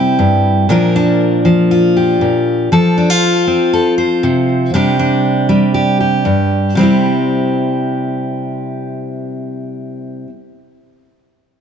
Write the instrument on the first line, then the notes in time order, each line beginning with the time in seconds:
steel-string acoustic guitar
Already playing: C3 G3 C4 E4 G4
0.19 G2
0.69 A#2 F3 D4 F4 A#4
0.96 D4
1.45 F3
1.71 F4
1.97 G4
2.21 A#2
2.72 F3 A4
2.98 D4
3.10 F4
3.47 C4
3.73 A4
3.98 C5
4.23 C3
4.74 C3 G3 D4 G4
4.99 D4
5.49 G3
5.74 G4
6.00 G4
6.25 G2
6.75 C3 G3 C4
6.81 E4 G4